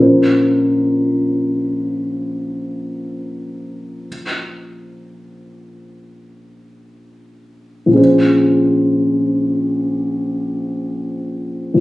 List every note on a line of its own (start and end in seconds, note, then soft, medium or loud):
0.00 7.85 A#1 soft
0.00 7.87 F3 soft
0.00 7.90 C#4 soft
0.00 7.92 A#4 soft
0.00 7.93 C5 soft
7.86 11.73 A#1 soft
7.86 11.75 F3 soft
7.91 11.78 C#4 soft
7.91 11.79 G#4 soft
7.96 11.80 C5 soft
11.74 11.80 A#1 soft
11.74 11.80 F3 soft